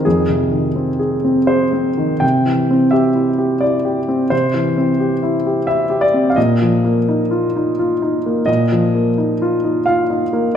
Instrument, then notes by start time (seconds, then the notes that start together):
grand piano
Already playing: D#3
0.05 F2 G#4
0.29 C3
0.51 D#3
0.76 C4
0.99 G#4
1.24 C4
1.47 G#4 C5
1.73 C4
1.97 D#3
2.20 C3 G5
2.46 E3
2.71 C4
2.91 G4 E5
3.14 E4
3.38 G4
3.60 E4 D5
3.85 G4
4.08 C4
4.30 C3 C5
4.54 E3
4.78 C4
5.00 G4
5.23 E4
5.47 G4
5.67 E4 E5
5.90 G4
6.01 D5
6.14 C4
6.30 F5
6.36 A#2 D#5
6.62 F3
6.84 A#3
7.08 D#4
7.31 F4
7.56 D#4
7.79 F4
8.02 D#4
8.26 A#3
8.46 A#2 D#5
8.72 F3
8.95 A#3
9.18 D#4
9.42 F4
9.64 D#4
9.86 F4 F5
10.10 D#4
10.33 A#3